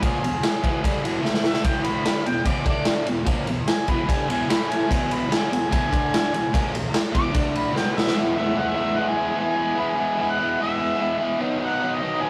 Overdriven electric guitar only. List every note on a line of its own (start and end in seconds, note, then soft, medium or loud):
0.00 0.21 A#2 medium
0.00 0.22 F3 medium
0.00 0.22 A#3 loud
0.23 0.39 E2 medium
0.23 0.39 B2 medium
0.63 0.83 E2 medium
0.63 0.83 B2 medium
0.63 0.84 E3 medium
0.83 1.03 G2 medium
0.83 1.04 D3 medium
0.83 1.04 G3 medium
1.03 1.23 E2 medium
1.03 1.21 B2 loud
1.03 1.22 E3 loud
1.22 1.63 A2 loud
1.22 1.63 E3 medium
1.22 1.64 A3 loud
1.62 2.02 E2 medium
1.62 2.04 B2 loud
1.62 2.05 E3 loud
2.03 2.24 G2 medium
2.03 2.25 D3 medium
2.03 2.25 G3 medium
2.26 2.42 E2 medium
2.26 2.42 B2 medium
2.45 2.65 E2 medium
2.45 2.65 B2 medium
2.45 2.66 E3 loud
2.66 3.06 D3 medium
2.66 3.06 A3 medium
2.66 3.07 D4 loud
3.06 3.23 E2 medium
3.06 3.23 B2 medium
3.25 3.45 A#2 medium
3.25 3.47 F3 medium
3.25 3.47 A#3 loud
3.46 3.63 E2 medium
3.46 3.63 B2 medium
3.88 4.07 E2 medium
3.88 4.09 B2 medium
3.88 4.09 E3 medium
4.08 4.28 G2 medium
4.08 4.29 D3 medium
4.08 4.29 G3 loud
4.28 4.48 E2 medium
4.28 4.49 B2 loud
4.28 4.48 E3 loud
4.49 4.89 A2 medium
4.49 4.89 E3 loud
4.49 4.90 A3 loud
4.87 5.29 E2 medium
4.87 5.30 B2 medium
4.87 5.30 E3 loud
5.29 5.50 G2 medium
5.29 5.51 D3 medium
5.29 5.51 G3 loud
5.51 5.67 E2 medium
5.51 5.68 B2 medium
5.70 5.91 E2 medium
5.70 5.89 B2 medium
5.70 5.90 E3 loud
5.89 6.31 D3 medium
5.89 6.32 A3 medium
5.89 6.32 D4 loud
6.32 6.49 E2 medium
6.32 6.49 B2 medium
6.53 6.73 A#2 medium
6.53 6.73 F3 medium
6.53 6.73 A#3 loud
6.73 6.90 E2 medium
6.73 6.90 B2 medium
7.12 7.33 E2 medium
7.12 7.31 B2 medium
7.12 7.32 E3 medium
7.31 7.73 D3 medium
7.31 7.74 A3 medium
7.31 7.74 D4 loud
7.74 8.14 B2 loud
7.74 8.15 F#3 loud
7.74 8.15 B3 loud
8.15 8.55 E3 loud
8.15 8.40 G#3 loud
8.15 8.38 B3 loud
8.15 8.35 E4 loud
8.35 8.58 B3 medium
8.35 8.59 E4 medium
8.40 8.56 G#3 medium
8.56 8.80 E3 medium
8.56 8.79 G#3 medium
8.56 8.77 B3 medium
8.60 8.75 E4 medium
8.76 8.97 G#3 medium
8.76 8.98 B3 medium
8.76 8.99 E4 medium
8.80 8.94 E3 medium
8.95 9.35 E3 medium
8.95 9.20 G#3 medium
8.95 9.19 B3 medium
9.01 9.16 E4 medium
9.17 9.39 B3 medium
9.17 9.40 E4 medium
9.21 9.37 G#3 medium
9.36 9.74 E3 loud
9.36 9.59 G#3 loud
9.36 9.59 B3 loud
9.41 9.55 E4 loud
9.56 9.77 B3 medium
9.56 9.79 E4 medium
9.60 9.76 G#3 medium
9.75 10.16 E3 loud
9.75 9.98 G#3 loud
9.75 9.97 B3 loud
9.80 9.94 E4 loud
9.95 10.20 B3 medium
9.95 10.21 E4 medium
10.00 10.17 G#3 medium
10.17 10.41 E3 medium
10.17 10.39 G#3 medium
10.17 10.39 B3 medium
10.22 10.36 E4 medium
10.37 10.59 G#3 medium
10.37 10.62 B3 medium
10.37 10.62 E4 medium
10.42 10.57 E3 medium
10.58 10.96 E3 medium
10.58 10.81 G#3 medium
10.58 10.81 B3 medium
10.63 10.77 E4 medium
10.79 10.99 G#3 medium
10.79 11.00 B3 medium
10.79 11.01 E4 medium
10.97 11.38 E3 loud
10.97 11.21 G#3 loud
10.97 11.21 B3 loud
11.02 11.17 E4 loud
11.18 11.40 G#3 medium
11.18 11.42 B3 medium
11.18 11.39 E4 medium
11.39 12.05 B2 medium
11.39 11.78 D#3 medium
11.39 11.63 F#3 loud
11.39 11.61 B3 loud
11.43 11.58 D#4 loud
11.58 11.83 B3 medium
11.58 11.84 D#4 medium
11.64 11.81 F#3 medium
11.79 12.03 D#3 medium
11.79 12.02 F#3 medium
11.83 12.02 B3 medium
11.83 11.99 D#4 medium
12.00 12.19 D#3 medium
12.00 12.20 F#3 medium
12.00 12.22 B3 medium
12.00 12.24 D#4 medium
12.06 12.30 B2 medium
12.20 12.30 D#3 medium
12.20 12.30 F#3 medium
12.20 12.30 B3 medium
12.25 12.30 D#4 medium